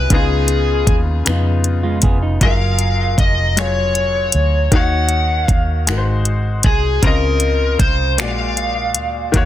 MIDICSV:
0, 0, Header, 1, 6, 480
1, 0, Start_track
1, 0, Key_signature, -5, "major"
1, 0, Tempo, 769231
1, 65, Time_signature, 6, 3, 24, 8
1, 5898, End_track
2, 0, Start_track
2, 0, Title_t, "Lead electric guitar"
2, 0, Program_c, 0, 29
2, 89, Note_on_c, 0, 68, 64
2, 592, Note_off_c, 0, 68, 0
2, 1516, Note_on_c, 0, 77, 83
2, 1992, Note_off_c, 0, 77, 0
2, 1995, Note_on_c, 0, 75, 63
2, 2233, Note_off_c, 0, 75, 0
2, 2236, Note_on_c, 0, 73, 77
2, 2956, Note_on_c, 0, 78, 87
2, 2972, Note_off_c, 0, 73, 0
2, 3411, Note_off_c, 0, 78, 0
2, 3411, Note_on_c, 0, 77, 87
2, 3645, Note_off_c, 0, 77, 0
2, 4157, Note_on_c, 0, 68, 73
2, 4395, Note_off_c, 0, 68, 0
2, 4398, Note_on_c, 0, 70, 80
2, 4866, Note_off_c, 0, 70, 0
2, 4869, Note_on_c, 0, 72, 73
2, 5090, Note_off_c, 0, 72, 0
2, 5111, Note_on_c, 0, 77, 94
2, 5898, Note_off_c, 0, 77, 0
2, 5898, End_track
3, 0, Start_track
3, 0, Title_t, "Grand piano"
3, 0, Program_c, 1, 0
3, 0, Control_c, 1, 64, 127
3, 0, Note_on_c, 1, 59, 51
3, 0, Note_on_c, 1, 64, 56
3, 0, Note_on_c, 1, 66, 49
3, 0, Note_on_c, 1, 67, 47
3, 0, Note_on_c, 1, 68, 57
3, 63, Note_on_c, 1, 49, 61
3, 73, Control_c, 1, 64, 0
3, 74, Note_off_c, 1, 64, 0
3, 75, Note_off_c, 1, 59, 0
3, 75, Note_on_c, 1, 59, 61
3, 77, Note_off_c, 1, 66, 0
3, 77, Note_off_c, 1, 67, 0
3, 77, Note_off_c, 1, 68, 0
3, 80, Note_on_c, 1, 63, 59
3, 92, Note_on_c, 1, 65, 78
3, 190, Control_c, 1, 64, 127
3, 614, Note_off_c, 1, 49, 0
3, 619, Note_off_c, 1, 59, 0
3, 622, Note_off_c, 1, 63, 0
3, 628, Note_off_c, 1, 65, 0
3, 780, Note_on_c, 1, 49, 52
3, 790, Note_on_c, 1, 59, 59
3, 798, Note_on_c, 1, 63, 52
3, 809, Note_on_c, 1, 65, 69
3, 1332, Note_off_c, 1, 49, 0
3, 1337, Note_off_c, 1, 59, 0
3, 1341, Note_off_c, 1, 63, 0
3, 1346, Note_off_c, 1, 65, 0
3, 1506, Note_on_c, 1, 54, 61
3, 1512, Control_c, 1, 64, 0
3, 1516, Note_on_c, 1, 65, 64
3, 1524, Note_on_c, 1, 68, 61
3, 1531, Note_on_c, 1, 70, 75
3, 1642, Control_c, 1, 64, 127
3, 2055, Note_off_c, 1, 54, 0
3, 2060, Note_off_c, 1, 65, 0
3, 2064, Note_off_c, 1, 68, 0
3, 2067, Note_off_c, 1, 70, 0
3, 2224, Note_on_c, 1, 54, 51
3, 2231, Note_on_c, 1, 65, 45
3, 2242, Note_on_c, 1, 68, 47
3, 2251, Note_on_c, 1, 73, 53
3, 2774, Note_off_c, 1, 54, 0
3, 2778, Note_off_c, 1, 65, 0
3, 2783, Note_off_c, 1, 68, 0
3, 2787, Note_off_c, 1, 73, 0
3, 2942, Note_on_c, 1, 51, 69
3, 2952, Control_c, 1, 64, 0
3, 2954, Note_on_c, 1, 63, 62
3, 2962, Note_on_c, 1, 66, 65
3, 2969, Note_on_c, 1, 73, 70
3, 3081, Control_c, 1, 64, 127
3, 3493, Note_off_c, 1, 51, 0
3, 3499, Note_off_c, 1, 63, 0
3, 3503, Note_off_c, 1, 66, 0
3, 3506, Note_off_c, 1, 73, 0
3, 3662, Note_on_c, 1, 56, 62
3, 3669, Note_on_c, 1, 63, 54
3, 3671, Control_c, 1, 64, 0
3, 3678, Note_on_c, 1, 66, 57
3, 3688, Note_on_c, 1, 70, 56
3, 3717, Note_off_c, 1, 70, 0
3, 3729, Note_on_c, 1, 72, 69
3, 3800, Control_c, 1, 64, 127
3, 4213, Note_off_c, 1, 56, 0
3, 4217, Note_off_c, 1, 63, 0
3, 4221, Note_off_c, 1, 66, 0
3, 4246, Note_off_c, 1, 72, 0
3, 4383, Note_on_c, 1, 49, 68
3, 4390, Note_on_c, 1, 60, 54
3, 4392, Control_c, 1, 64, 0
3, 4401, Note_on_c, 1, 65, 61
3, 4412, Note_on_c, 1, 75, 78
3, 4488, Control_c, 1, 64, 127
3, 4933, Note_off_c, 1, 49, 0
3, 4937, Note_off_c, 1, 60, 0
3, 4942, Note_off_c, 1, 65, 0
3, 4948, Note_off_c, 1, 75, 0
3, 5104, Note_on_c, 1, 46, 60
3, 5112, Note_on_c, 1, 56, 46
3, 5113, Control_c, 1, 64, 0
3, 5120, Note_on_c, 1, 66, 49
3, 5131, Note_on_c, 1, 74, 58
3, 5230, Control_c, 1, 64, 127
3, 5654, Note_off_c, 1, 46, 0
3, 5658, Note_off_c, 1, 56, 0
3, 5662, Note_off_c, 1, 66, 0
3, 5667, Note_off_c, 1, 74, 0
3, 5815, Note_on_c, 1, 51, 79
3, 5825, Note_on_c, 1, 58, 76
3, 5832, Control_c, 1, 64, 0
3, 5837, Note_on_c, 1, 66, 78
3, 5847, Note_on_c, 1, 73, 83
3, 5898, Note_off_c, 1, 51, 0
3, 5898, Note_off_c, 1, 58, 0
3, 5898, Note_off_c, 1, 66, 0
3, 5898, Note_off_c, 1, 73, 0
3, 5898, End_track
4, 0, Start_track
4, 0, Title_t, "Clean electric guitar"
4, 0, Program_c, 2, 27
4, 1144, Note_on_c, 2, 65, 57
4, 1148, Note_on_c, 2, 56, 54
4, 1258, Note_off_c, 2, 65, 0
4, 1260, Note_off_c, 2, 56, 0
4, 1269, Note_on_c, 2, 68, 66
4, 1274, Note_on_c, 2, 59, 60
4, 1381, Note_off_c, 2, 68, 0
4, 1384, Note_off_c, 2, 59, 0
4, 1388, Note_on_c, 2, 63, 57
4, 1615, Note_off_c, 2, 63, 0
4, 5898, End_track
5, 0, Start_track
5, 0, Title_t, "Fingered electric bass"
5, 0, Program_c, 3, 33
5, 67, Note_on_c, 3, 37, 100
5, 521, Note_off_c, 3, 37, 0
5, 545, Note_on_c, 3, 39, 66
5, 761, Note_off_c, 3, 39, 0
5, 792, Note_on_c, 3, 41, 72
5, 1244, Note_off_c, 3, 41, 0
5, 1269, Note_on_c, 3, 29, 64
5, 1483, Note_off_c, 3, 29, 0
5, 1507, Note_on_c, 3, 30, 75
5, 1961, Note_off_c, 3, 30, 0
5, 1987, Note_on_c, 3, 29, 74
5, 2681, Note_off_c, 3, 29, 0
5, 2710, Note_on_c, 3, 38, 63
5, 2924, Note_off_c, 3, 38, 0
5, 2947, Note_on_c, 3, 39, 94
5, 3401, Note_off_c, 3, 39, 0
5, 3425, Note_on_c, 3, 39, 66
5, 3667, Note_on_c, 3, 32, 78
5, 3676, Note_off_c, 3, 39, 0
5, 4121, Note_off_c, 3, 32, 0
5, 4147, Note_on_c, 3, 36, 72
5, 4362, Note_off_c, 3, 36, 0
5, 4386, Note_on_c, 3, 37, 91
5, 4840, Note_off_c, 3, 37, 0
5, 4866, Note_on_c, 3, 36, 80
5, 5112, Note_off_c, 3, 36, 0
5, 5112, Note_on_c, 3, 34, 86
5, 5594, Note_off_c, 3, 34, 0
5, 5594, Note_on_c, 3, 38, 63
5, 5806, Note_off_c, 3, 38, 0
5, 5829, Note_on_c, 3, 39, 82
5, 5898, Note_off_c, 3, 39, 0
5, 5898, End_track
6, 0, Start_track
6, 0, Title_t, "Drums"
6, 64, Note_on_c, 9, 36, 83
6, 64, Note_on_c, 9, 42, 58
6, 126, Note_off_c, 9, 42, 0
6, 127, Note_off_c, 9, 36, 0
6, 299, Note_on_c, 9, 42, 43
6, 362, Note_off_c, 9, 42, 0
6, 543, Note_on_c, 9, 36, 81
6, 544, Note_on_c, 9, 42, 58
6, 605, Note_off_c, 9, 36, 0
6, 607, Note_off_c, 9, 42, 0
6, 786, Note_on_c, 9, 42, 57
6, 794, Note_on_c, 9, 26, 105
6, 849, Note_off_c, 9, 42, 0
6, 857, Note_off_c, 9, 26, 0
6, 1025, Note_on_c, 9, 42, 49
6, 1087, Note_off_c, 9, 42, 0
6, 1259, Note_on_c, 9, 42, 86
6, 1266, Note_on_c, 9, 36, 74
6, 1321, Note_off_c, 9, 42, 0
6, 1328, Note_off_c, 9, 36, 0
6, 1504, Note_on_c, 9, 36, 84
6, 1504, Note_on_c, 9, 42, 57
6, 1567, Note_off_c, 9, 36, 0
6, 1567, Note_off_c, 9, 42, 0
6, 1738, Note_on_c, 9, 42, 44
6, 1801, Note_off_c, 9, 42, 0
6, 1984, Note_on_c, 9, 36, 86
6, 1988, Note_on_c, 9, 42, 63
6, 2046, Note_off_c, 9, 36, 0
6, 2050, Note_off_c, 9, 42, 0
6, 2229, Note_on_c, 9, 42, 56
6, 2238, Note_on_c, 9, 26, 92
6, 2292, Note_off_c, 9, 42, 0
6, 2300, Note_off_c, 9, 26, 0
6, 2466, Note_on_c, 9, 42, 50
6, 2528, Note_off_c, 9, 42, 0
6, 2698, Note_on_c, 9, 42, 70
6, 2760, Note_off_c, 9, 42, 0
6, 2944, Note_on_c, 9, 36, 79
6, 2944, Note_on_c, 9, 42, 60
6, 3006, Note_off_c, 9, 36, 0
6, 3007, Note_off_c, 9, 42, 0
6, 3174, Note_on_c, 9, 42, 41
6, 3236, Note_off_c, 9, 42, 0
6, 3422, Note_on_c, 9, 36, 88
6, 3425, Note_on_c, 9, 42, 67
6, 3484, Note_off_c, 9, 36, 0
6, 3488, Note_off_c, 9, 42, 0
6, 3665, Note_on_c, 9, 42, 60
6, 3673, Note_on_c, 9, 26, 102
6, 3727, Note_off_c, 9, 42, 0
6, 3735, Note_off_c, 9, 26, 0
6, 3902, Note_on_c, 9, 42, 49
6, 3965, Note_off_c, 9, 42, 0
6, 4138, Note_on_c, 9, 42, 80
6, 4145, Note_on_c, 9, 36, 81
6, 4201, Note_off_c, 9, 42, 0
6, 4207, Note_off_c, 9, 36, 0
6, 4384, Note_on_c, 9, 36, 87
6, 4385, Note_on_c, 9, 42, 58
6, 4447, Note_off_c, 9, 36, 0
6, 4447, Note_off_c, 9, 42, 0
6, 4617, Note_on_c, 9, 42, 44
6, 4679, Note_off_c, 9, 42, 0
6, 4863, Note_on_c, 9, 36, 91
6, 4865, Note_on_c, 9, 42, 59
6, 4926, Note_off_c, 9, 36, 0
6, 4927, Note_off_c, 9, 42, 0
6, 5106, Note_on_c, 9, 42, 57
6, 5115, Note_on_c, 9, 26, 114
6, 5169, Note_off_c, 9, 42, 0
6, 5177, Note_off_c, 9, 26, 0
6, 5348, Note_on_c, 9, 42, 48
6, 5411, Note_off_c, 9, 42, 0
6, 5582, Note_on_c, 9, 42, 78
6, 5644, Note_off_c, 9, 42, 0
6, 5826, Note_on_c, 9, 36, 82
6, 5827, Note_on_c, 9, 42, 57
6, 5889, Note_off_c, 9, 36, 0
6, 5889, Note_off_c, 9, 42, 0
6, 5898, End_track
0, 0, End_of_file